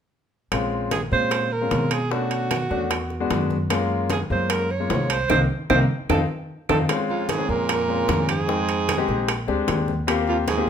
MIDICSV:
0, 0, Header, 1, 6, 480
1, 0, Start_track
1, 0, Key_signature, -5, "minor"
1, 0, Tempo, 398406
1, 625, Time_signature, 4, 2, 24, 8
1, 12887, End_track
2, 0, Start_track
2, 0, Title_t, "Alto saxophone"
2, 0, Program_c, 0, 65
2, 1114, Note_on_c, 0, 68, 72
2, 1220, Note_off_c, 0, 68, 0
2, 1357, Note_on_c, 0, 72, 96
2, 1835, Note_on_c, 0, 70, 83
2, 1853, Note_off_c, 0, 72, 0
2, 2315, Note_on_c, 0, 68, 81
2, 2333, Note_off_c, 0, 70, 0
2, 2554, Note_on_c, 0, 66, 83
2, 2572, Note_off_c, 0, 68, 0
2, 4231, Note_off_c, 0, 66, 0
2, 4965, Note_on_c, 0, 68, 73
2, 5069, Note_off_c, 0, 68, 0
2, 5209, Note_on_c, 0, 72, 85
2, 5439, Note_on_c, 0, 70, 87
2, 5457, Note_off_c, 0, 72, 0
2, 5676, Note_on_c, 0, 73, 88
2, 5694, Note_off_c, 0, 70, 0
2, 6152, Note_on_c, 0, 72, 93
2, 6170, Note_off_c, 0, 73, 0
2, 6390, Note_off_c, 0, 72, 0
2, 6397, Note_on_c, 0, 72, 81
2, 6510, Note_off_c, 0, 72, 0
2, 6868, Note_on_c, 0, 72, 80
2, 6983, Note_off_c, 0, 72, 0
2, 7357, Note_on_c, 0, 69, 77
2, 7469, Note_off_c, 0, 69, 0
2, 8068, Note_on_c, 0, 69, 78
2, 8183, Note_off_c, 0, 69, 0
2, 8552, Note_on_c, 0, 65, 74
2, 8791, Note_on_c, 0, 68, 83
2, 8809, Note_off_c, 0, 65, 0
2, 9035, Note_on_c, 0, 70, 96
2, 9053, Note_off_c, 0, 68, 0
2, 9991, Note_off_c, 0, 70, 0
2, 10000, Note_on_c, 0, 68, 90
2, 11386, Note_off_c, 0, 68, 0
2, 12393, Note_on_c, 0, 65, 74
2, 12500, Note_off_c, 0, 65, 0
2, 12635, Note_on_c, 0, 68, 85
2, 12887, Note_off_c, 0, 68, 0
2, 12887, End_track
3, 0, Start_track
3, 0, Title_t, "Grand piano"
3, 0, Program_c, 1, 0
3, 624, Note_on_c, 1, 56, 80
3, 624, Note_on_c, 1, 60, 67
3, 627, Note_on_c, 1, 61, 73
3, 630, Note_on_c, 1, 65, 87
3, 1130, Note_off_c, 1, 56, 0
3, 1130, Note_off_c, 1, 60, 0
3, 1131, Note_off_c, 1, 61, 0
3, 1132, Note_off_c, 1, 65, 0
3, 1342, Note_on_c, 1, 56, 63
3, 1346, Note_on_c, 1, 60, 53
3, 1348, Note_on_c, 1, 61, 54
3, 1351, Note_on_c, 1, 65, 67
3, 1765, Note_off_c, 1, 56, 0
3, 1766, Note_off_c, 1, 60, 0
3, 1767, Note_off_c, 1, 61, 0
3, 1769, Note_off_c, 1, 65, 0
3, 1943, Note_on_c, 1, 56, 65
3, 1946, Note_on_c, 1, 60, 60
3, 1948, Note_on_c, 1, 61, 59
3, 1952, Note_on_c, 1, 65, 72
3, 2365, Note_off_c, 1, 56, 0
3, 2367, Note_off_c, 1, 60, 0
3, 2368, Note_off_c, 1, 61, 0
3, 2370, Note_off_c, 1, 65, 0
3, 2540, Note_on_c, 1, 57, 68
3, 2543, Note_on_c, 1, 61, 67
3, 2546, Note_on_c, 1, 62, 62
3, 2548, Note_on_c, 1, 66, 76
3, 3048, Note_off_c, 1, 57, 0
3, 3049, Note_off_c, 1, 61, 0
3, 3051, Note_off_c, 1, 62, 0
3, 3052, Note_off_c, 1, 66, 0
3, 3258, Note_on_c, 1, 57, 71
3, 3260, Note_on_c, 1, 61, 66
3, 3262, Note_on_c, 1, 62, 69
3, 3265, Note_on_c, 1, 66, 77
3, 3503, Note_off_c, 1, 57, 0
3, 3504, Note_off_c, 1, 61, 0
3, 3505, Note_off_c, 1, 62, 0
3, 3507, Note_off_c, 1, 66, 0
3, 3858, Note_on_c, 1, 56, 80
3, 3860, Note_on_c, 1, 59, 73
3, 3862, Note_on_c, 1, 62, 70
3, 3865, Note_on_c, 1, 66, 81
3, 4283, Note_off_c, 1, 56, 0
3, 4284, Note_off_c, 1, 59, 0
3, 4285, Note_off_c, 1, 62, 0
3, 4287, Note_off_c, 1, 66, 0
3, 4458, Note_on_c, 1, 56, 83
3, 4462, Note_on_c, 1, 58, 76
3, 4463, Note_on_c, 1, 61, 78
3, 4465, Note_on_c, 1, 65, 93
3, 4967, Note_off_c, 1, 56, 0
3, 4969, Note_off_c, 1, 58, 0
3, 4969, Note_off_c, 1, 61, 0
3, 4971, Note_off_c, 1, 65, 0
3, 5183, Note_on_c, 1, 56, 62
3, 5186, Note_on_c, 1, 58, 54
3, 5189, Note_on_c, 1, 61, 57
3, 5191, Note_on_c, 1, 65, 67
3, 5605, Note_off_c, 1, 56, 0
3, 5607, Note_off_c, 1, 58, 0
3, 5608, Note_off_c, 1, 61, 0
3, 5610, Note_off_c, 1, 65, 0
3, 5780, Note_on_c, 1, 56, 66
3, 5784, Note_on_c, 1, 58, 60
3, 5786, Note_on_c, 1, 61, 57
3, 5787, Note_on_c, 1, 65, 73
3, 6204, Note_off_c, 1, 56, 0
3, 6206, Note_off_c, 1, 58, 0
3, 6207, Note_off_c, 1, 61, 0
3, 6208, Note_off_c, 1, 65, 0
3, 6386, Note_on_c, 1, 63, 84
3, 6387, Note_on_c, 1, 58, 80
3, 6388, Note_on_c, 1, 60, 80
3, 6541, Note_off_c, 1, 58, 0
3, 6541, Note_off_c, 1, 60, 0
3, 6541, Note_off_c, 1, 63, 0
3, 6867, Note_on_c, 1, 58, 91
3, 6867, Note_on_c, 1, 63, 88
3, 6868, Note_on_c, 1, 60, 91
3, 7021, Note_off_c, 1, 58, 0
3, 7021, Note_off_c, 1, 63, 0
3, 7022, Note_off_c, 1, 60, 0
3, 7348, Note_on_c, 1, 63, 85
3, 7348, Note_on_c, 1, 65, 79
3, 7349, Note_on_c, 1, 60, 84
3, 7502, Note_off_c, 1, 60, 0
3, 7502, Note_off_c, 1, 63, 0
3, 7502, Note_off_c, 1, 65, 0
3, 8063, Note_on_c, 1, 65, 85
3, 8065, Note_on_c, 1, 63, 75
3, 8067, Note_on_c, 1, 60, 78
3, 8219, Note_off_c, 1, 65, 0
3, 8220, Note_off_c, 1, 63, 0
3, 8221, Note_off_c, 1, 60, 0
3, 8303, Note_on_c, 1, 56, 84
3, 8303, Note_on_c, 1, 60, 77
3, 8307, Note_on_c, 1, 61, 76
3, 8310, Note_on_c, 1, 65, 86
3, 8725, Note_off_c, 1, 56, 0
3, 8725, Note_off_c, 1, 60, 0
3, 8727, Note_off_c, 1, 61, 0
3, 8729, Note_off_c, 1, 65, 0
3, 8896, Note_on_c, 1, 56, 61
3, 8899, Note_on_c, 1, 60, 57
3, 8902, Note_on_c, 1, 61, 57
3, 8905, Note_on_c, 1, 68, 68
3, 9322, Note_off_c, 1, 56, 0
3, 9323, Note_off_c, 1, 60, 0
3, 9325, Note_off_c, 1, 61, 0
3, 9326, Note_off_c, 1, 68, 0
3, 9496, Note_on_c, 1, 56, 66
3, 9498, Note_on_c, 1, 60, 62
3, 9502, Note_on_c, 1, 61, 61
3, 9502, Note_on_c, 1, 65, 80
3, 10006, Note_off_c, 1, 56, 0
3, 10007, Note_off_c, 1, 60, 0
3, 10009, Note_off_c, 1, 61, 0
3, 10009, Note_off_c, 1, 65, 0
3, 10219, Note_on_c, 1, 56, 70
3, 10221, Note_on_c, 1, 60, 60
3, 10224, Note_on_c, 1, 63, 58
3, 10227, Note_on_c, 1, 79, 72
3, 10644, Note_off_c, 1, 56, 0
3, 10645, Note_off_c, 1, 60, 0
3, 10646, Note_off_c, 1, 63, 0
3, 10647, Note_off_c, 1, 79, 0
3, 10815, Note_on_c, 1, 56, 79
3, 10817, Note_on_c, 1, 60, 68
3, 10822, Note_on_c, 1, 63, 74
3, 10822, Note_on_c, 1, 67, 89
3, 11182, Note_off_c, 1, 56, 0
3, 11183, Note_off_c, 1, 60, 0
3, 11185, Note_off_c, 1, 63, 0
3, 11185, Note_off_c, 1, 67, 0
3, 11416, Note_on_c, 1, 56, 88
3, 11420, Note_on_c, 1, 60, 73
3, 11422, Note_on_c, 1, 62, 76
3, 11426, Note_on_c, 1, 67, 86
3, 11926, Note_off_c, 1, 56, 0
3, 11928, Note_off_c, 1, 60, 0
3, 11929, Note_off_c, 1, 62, 0
3, 11932, Note_off_c, 1, 67, 0
3, 12136, Note_on_c, 1, 58, 84
3, 12138, Note_on_c, 1, 60, 79
3, 12139, Note_on_c, 1, 65, 78
3, 12144, Note_on_c, 1, 67, 94
3, 12562, Note_off_c, 1, 58, 0
3, 12564, Note_off_c, 1, 60, 0
3, 12564, Note_off_c, 1, 65, 0
3, 12567, Note_off_c, 1, 67, 0
3, 12740, Note_on_c, 1, 58, 65
3, 12742, Note_on_c, 1, 60, 62
3, 12744, Note_on_c, 1, 65, 62
3, 12746, Note_on_c, 1, 67, 78
3, 12887, Note_off_c, 1, 58, 0
3, 12887, Note_off_c, 1, 60, 0
3, 12887, Note_off_c, 1, 65, 0
3, 12887, Note_off_c, 1, 67, 0
3, 12887, End_track
4, 0, Start_track
4, 0, Title_t, "Baritone saxophone"
4, 0, Program_c, 2, 67
4, 8548, Note_on_c, 2, 41, 65
4, 8782, Note_on_c, 2, 44, 74
4, 8800, Note_off_c, 2, 41, 0
4, 9020, Note_on_c, 2, 46, 79
4, 9038, Note_off_c, 2, 44, 0
4, 9984, Note_off_c, 2, 46, 0
4, 9995, Note_on_c, 2, 44, 74
4, 11384, Note_off_c, 2, 44, 0
4, 12390, Note_on_c, 2, 41, 63
4, 12498, Note_off_c, 2, 41, 0
4, 12622, Note_on_c, 2, 44, 75
4, 12876, Note_off_c, 2, 44, 0
4, 12887, End_track
5, 0, Start_track
5, 0, Title_t, "Upright bass"
5, 0, Program_c, 3, 32
5, 622, Note_on_c, 3, 34, 73
5, 1296, Note_off_c, 3, 34, 0
5, 1346, Note_on_c, 3, 46, 74
5, 2019, Note_off_c, 3, 46, 0
5, 2066, Note_on_c, 3, 47, 77
5, 3195, Note_off_c, 3, 47, 0
5, 3262, Note_on_c, 3, 40, 77
5, 3937, Note_off_c, 3, 40, 0
5, 3981, Note_on_c, 3, 42, 79
5, 5113, Note_off_c, 3, 42, 0
5, 5182, Note_on_c, 3, 42, 81
5, 5857, Note_off_c, 3, 42, 0
5, 5900, Note_on_c, 3, 36, 78
5, 6350, Note_off_c, 3, 36, 0
5, 6382, Note_on_c, 3, 36, 78
5, 6563, Note_off_c, 3, 36, 0
5, 6863, Note_on_c, 3, 36, 80
5, 7044, Note_off_c, 3, 36, 0
5, 7341, Note_on_c, 3, 41, 77
5, 7523, Note_off_c, 3, 41, 0
5, 8061, Note_on_c, 3, 41, 82
5, 8243, Note_off_c, 3, 41, 0
5, 9021, Note_on_c, 3, 41, 80
5, 9696, Note_off_c, 3, 41, 0
5, 9743, Note_on_c, 3, 41, 82
5, 10873, Note_off_c, 3, 41, 0
5, 10939, Note_on_c, 3, 34, 77
5, 11390, Note_off_c, 3, 34, 0
5, 11423, Note_on_c, 3, 38, 63
5, 11648, Note_off_c, 3, 38, 0
5, 11659, Note_on_c, 3, 39, 80
5, 12792, Note_off_c, 3, 39, 0
5, 12887, End_track
6, 0, Start_track
6, 0, Title_t, "Drums"
6, 623, Note_on_c, 9, 60, 59
6, 624, Note_on_c, 9, 65, 73
6, 626, Note_on_c, 9, 63, 29
6, 627, Note_on_c, 9, 75, 57
6, 743, Note_off_c, 9, 60, 0
6, 745, Note_off_c, 9, 65, 0
6, 746, Note_off_c, 9, 63, 0
6, 747, Note_off_c, 9, 75, 0
6, 869, Note_on_c, 9, 63, 29
6, 990, Note_off_c, 9, 63, 0
6, 1100, Note_on_c, 9, 60, 50
6, 1102, Note_on_c, 9, 65, 58
6, 1103, Note_on_c, 9, 63, 83
6, 1221, Note_off_c, 9, 60, 0
6, 1222, Note_off_c, 9, 65, 0
6, 1223, Note_off_c, 9, 63, 0
6, 1344, Note_on_c, 9, 63, 28
6, 1464, Note_off_c, 9, 63, 0
6, 1580, Note_on_c, 9, 60, 55
6, 1585, Note_on_c, 9, 65, 76
6, 1588, Note_on_c, 9, 63, 29
6, 1588, Note_on_c, 9, 75, 56
6, 1701, Note_off_c, 9, 60, 0
6, 1705, Note_off_c, 9, 65, 0
6, 1708, Note_off_c, 9, 63, 0
6, 1709, Note_off_c, 9, 75, 0
6, 1831, Note_on_c, 9, 63, 29
6, 1952, Note_off_c, 9, 63, 0
6, 2062, Note_on_c, 9, 65, 55
6, 2063, Note_on_c, 9, 60, 57
6, 2063, Note_on_c, 9, 61, 65
6, 2066, Note_on_c, 9, 63, 67
6, 2183, Note_off_c, 9, 65, 0
6, 2184, Note_off_c, 9, 60, 0
6, 2184, Note_off_c, 9, 61, 0
6, 2186, Note_off_c, 9, 63, 0
6, 2300, Note_on_c, 9, 65, 76
6, 2310, Note_on_c, 9, 75, 61
6, 2421, Note_off_c, 9, 65, 0
6, 2430, Note_off_c, 9, 75, 0
6, 2548, Note_on_c, 9, 60, 60
6, 2550, Note_on_c, 9, 63, 28
6, 2669, Note_off_c, 9, 60, 0
6, 2670, Note_off_c, 9, 63, 0
6, 2782, Note_on_c, 9, 65, 56
6, 2786, Note_on_c, 9, 63, 30
6, 2902, Note_off_c, 9, 65, 0
6, 2907, Note_off_c, 9, 63, 0
6, 3021, Note_on_c, 9, 65, 78
6, 3025, Note_on_c, 9, 60, 50
6, 3026, Note_on_c, 9, 63, 79
6, 3034, Note_on_c, 9, 75, 59
6, 3142, Note_off_c, 9, 65, 0
6, 3145, Note_off_c, 9, 60, 0
6, 3146, Note_off_c, 9, 63, 0
6, 3154, Note_off_c, 9, 75, 0
6, 3264, Note_on_c, 9, 60, 28
6, 3264, Note_on_c, 9, 63, 28
6, 3385, Note_off_c, 9, 60, 0
6, 3385, Note_off_c, 9, 63, 0
6, 3501, Note_on_c, 9, 60, 59
6, 3503, Note_on_c, 9, 65, 80
6, 3510, Note_on_c, 9, 63, 32
6, 3513, Note_on_c, 9, 75, 57
6, 3622, Note_off_c, 9, 60, 0
6, 3624, Note_off_c, 9, 65, 0
6, 3631, Note_off_c, 9, 63, 0
6, 3633, Note_off_c, 9, 75, 0
6, 3739, Note_on_c, 9, 60, 33
6, 3753, Note_on_c, 9, 63, 28
6, 3859, Note_off_c, 9, 60, 0
6, 3873, Note_off_c, 9, 63, 0
6, 3981, Note_on_c, 9, 65, 56
6, 3983, Note_on_c, 9, 60, 57
6, 3983, Note_on_c, 9, 61, 75
6, 3986, Note_on_c, 9, 63, 67
6, 4102, Note_off_c, 9, 65, 0
6, 4104, Note_off_c, 9, 60, 0
6, 4104, Note_off_c, 9, 61, 0
6, 4106, Note_off_c, 9, 63, 0
6, 4222, Note_on_c, 9, 60, 31
6, 4226, Note_on_c, 9, 63, 63
6, 4342, Note_off_c, 9, 60, 0
6, 4347, Note_off_c, 9, 63, 0
6, 4460, Note_on_c, 9, 63, 31
6, 4462, Note_on_c, 9, 60, 63
6, 4463, Note_on_c, 9, 65, 79
6, 4468, Note_on_c, 9, 75, 58
6, 4581, Note_off_c, 9, 63, 0
6, 4583, Note_off_c, 9, 60, 0
6, 4584, Note_off_c, 9, 65, 0
6, 4588, Note_off_c, 9, 75, 0
6, 4700, Note_on_c, 9, 63, 30
6, 4820, Note_off_c, 9, 63, 0
6, 4935, Note_on_c, 9, 63, 81
6, 4940, Note_on_c, 9, 60, 52
6, 4944, Note_on_c, 9, 65, 60
6, 5055, Note_off_c, 9, 63, 0
6, 5060, Note_off_c, 9, 60, 0
6, 5064, Note_off_c, 9, 65, 0
6, 5182, Note_on_c, 9, 63, 28
6, 5303, Note_off_c, 9, 63, 0
6, 5419, Note_on_c, 9, 60, 59
6, 5419, Note_on_c, 9, 65, 78
6, 5428, Note_on_c, 9, 63, 33
6, 5428, Note_on_c, 9, 75, 62
6, 5540, Note_off_c, 9, 60, 0
6, 5540, Note_off_c, 9, 65, 0
6, 5548, Note_off_c, 9, 75, 0
6, 5549, Note_off_c, 9, 63, 0
6, 5668, Note_on_c, 9, 63, 30
6, 5788, Note_off_c, 9, 63, 0
6, 5904, Note_on_c, 9, 60, 59
6, 5904, Note_on_c, 9, 61, 73
6, 5906, Note_on_c, 9, 65, 52
6, 5906, Note_on_c, 9, 66, 59
6, 5913, Note_on_c, 9, 63, 69
6, 6025, Note_off_c, 9, 60, 0
6, 6025, Note_off_c, 9, 61, 0
6, 6027, Note_off_c, 9, 65, 0
6, 6027, Note_off_c, 9, 66, 0
6, 6033, Note_off_c, 9, 63, 0
6, 6143, Note_on_c, 9, 65, 84
6, 6145, Note_on_c, 9, 75, 63
6, 6264, Note_off_c, 9, 65, 0
6, 6266, Note_off_c, 9, 75, 0
6, 6379, Note_on_c, 9, 75, 83
6, 6382, Note_on_c, 9, 60, 87
6, 6386, Note_on_c, 9, 65, 82
6, 6389, Note_on_c, 9, 63, 86
6, 6499, Note_off_c, 9, 75, 0
6, 6503, Note_off_c, 9, 60, 0
6, 6506, Note_off_c, 9, 65, 0
6, 6509, Note_off_c, 9, 63, 0
6, 6866, Note_on_c, 9, 60, 76
6, 6866, Note_on_c, 9, 75, 88
6, 6867, Note_on_c, 9, 65, 79
6, 6871, Note_on_c, 9, 63, 82
6, 6986, Note_off_c, 9, 60, 0
6, 6986, Note_off_c, 9, 75, 0
6, 6987, Note_off_c, 9, 65, 0
6, 6991, Note_off_c, 9, 63, 0
6, 7343, Note_on_c, 9, 75, 86
6, 7345, Note_on_c, 9, 60, 82
6, 7346, Note_on_c, 9, 63, 83
6, 7348, Note_on_c, 9, 65, 85
6, 7463, Note_off_c, 9, 75, 0
6, 7466, Note_off_c, 9, 60, 0
6, 7466, Note_off_c, 9, 63, 0
6, 7468, Note_off_c, 9, 65, 0
6, 8061, Note_on_c, 9, 75, 91
6, 8065, Note_on_c, 9, 60, 85
6, 8066, Note_on_c, 9, 65, 82
6, 8069, Note_on_c, 9, 63, 85
6, 8182, Note_off_c, 9, 75, 0
6, 8186, Note_off_c, 9, 60, 0
6, 8187, Note_off_c, 9, 65, 0
6, 8190, Note_off_c, 9, 63, 0
6, 8303, Note_on_c, 9, 60, 62
6, 8303, Note_on_c, 9, 75, 54
6, 8305, Note_on_c, 9, 65, 75
6, 8309, Note_on_c, 9, 63, 30
6, 8423, Note_off_c, 9, 75, 0
6, 8424, Note_off_c, 9, 60, 0
6, 8426, Note_off_c, 9, 65, 0
6, 8430, Note_off_c, 9, 63, 0
6, 8547, Note_on_c, 9, 63, 32
6, 8667, Note_off_c, 9, 63, 0
6, 8780, Note_on_c, 9, 63, 84
6, 8786, Note_on_c, 9, 60, 52
6, 8787, Note_on_c, 9, 65, 62
6, 8901, Note_off_c, 9, 63, 0
6, 8907, Note_off_c, 9, 60, 0
6, 8908, Note_off_c, 9, 65, 0
6, 9024, Note_on_c, 9, 63, 29
6, 9145, Note_off_c, 9, 63, 0
6, 9265, Note_on_c, 9, 75, 60
6, 9267, Note_on_c, 9, 60, 61
6, 9267, Note_on_c, 9, 65, 85
6, 9270, Note_on_c, 9, 63, 30
6, 9386, Note_off_c, 9, 75, 0
6, 9388, Note_off_c, 9, 60, 0
6, 9388, Note_off_c, 9, 65, 0
6, 9390, Note_off_c, 9, 63, 0
6, 9512, Note_on_c, 9, 63, 29
6, 9633, Note_off_c, 9, 63, 0
6, 9745, Note_on_c, 9, 60, 65
6, 9745, Note_on_c, 9, 61, 73
6, 9746, Note_on_c, 9, 63, 74
6, 9750, Note_on_c, 9, 65, 57
6, 9866, Note_off_c, 9, 60, 0
6, 9866, Note_off_c, 9, 61, 0
6, 9867, Note_off_c, 9, 63, 0
6, 9870, Note_off_c, 9, 65, 0
6, 9982, Note_on_c, 9, 75, 66
6, 9985, Note_on_c, 9, 65, 73
6, 9989, Note_on_c, 9, 63, 66
6, 10102, Note_off_c, 9, 75, 0
6, 10106, Note_off_c, 9, 65, 0
6, 10109, Note_off_c, 9, 63, 0
6, 10228, Note_on_c, 9, 60, 59
6, 10348, Note_off_c, 9, 60, 0
6, 10465, Note_on_c, 9, 65, 58
6, 10467, Note_on_c, 9, 63, 33
6, 10586, Note_off_c, 9, 65, 0
6, 10588, Note_off_c, 9, 63, 0
6, 10704, Note_on_c, 9, 75, 61
6, 10707, Note_on_c, 9, 60, 50
6, 10709, Note_on_c, 9, 65, 80
6, 10710, Note_on_c, 9, 63, 86
6, 10824, Note_off_c, 9, 75, 0
6, 10827, Note_off_c, 9, 60, 0
6, 10829, Note_off_c, 9, 65, 0
6, 10830, Note_off_c, 9, 63, 0
6, 10947, Note_on_c, 9, 60, 30
6, 10957, Note_on_c, 9, 63, 29
6, 11067, Note_off_c, 9, 60, 0
6, 11077, Note_off_c, 9, 63, 0
6, 11186, Note_on_c, 9, 65, 83
6, 11187, Note_on_c, 9, 60, 54
6, 11188, Note_on_c, 9, 75, 59
6, 11194, Note_on_c, 9, 63, 30
6, 11307, Note_off_c, 9, 60, 0
6, 11307, Note_off_c, 9, 65, 0
6, 11309, Note_off_c, 9, 75, 0
6, 11315, Note_off_c, 9, 63, 0
6, 11422, Note_on_c, 9, 60, 33
6, 11432, Note_on_c, 9, 63, 33
6, 11543, Note_off_c, 9, 60, 0
6, 11552, Note_off_c, 9, 63, 0
6, 11661, Note_on_c, 9, 60, 63
6, 11661, Note_on_c, 9, 61, 75
6, 11666, Note_on_c, 9, 65, 59
6, 11672, Note_on_c, 9, 63, 77
6, 11782, Note_off_c, 9, 60, 0
6, 11782, Note_off_c, 9, 61, 0
6, 11787, Note_off_c, 9, 65, 0
6, 11792, Note_off_c, 9, 63, 0
6, 11902, Note_on_c, 9, 60, 32
6, 11905, Note_on_c, 9, 63, 63
6, 12023, Note_off_c, 9, 60, 0
6, 12026, Note_off_c, 9, 63, 0
6, 12145, Note_on_c, 9, 60, 65
6, 12146, Note_on_c, 9, 65, 88
6, 12151, Note_on_c, 9, 75, 54
6, 12265, Note_off_c, 9, 60, 0
6, 12266, Note_off_c, 9, 65, 0
6, 12272, Note_off_c, 9, 75, 0
6, 12385, Note_on_c, 9, 63, 32
6, 12506, Note_off_c, 9, 63, 0
6, 12621, Note_on_c, 9, 63, 81
6, 12623, Note_on_c, 9, 60, 52
6, 12626, Note_on_c, 9, 65, 59
6, 12741, Note_off_c, 9, 63, 0
6, 12744, Note_off_c, 9, 60, 0
6, 12747, Note_off_c, 9, 65, 0
6, 12887, End_track
0, 0, End_of_file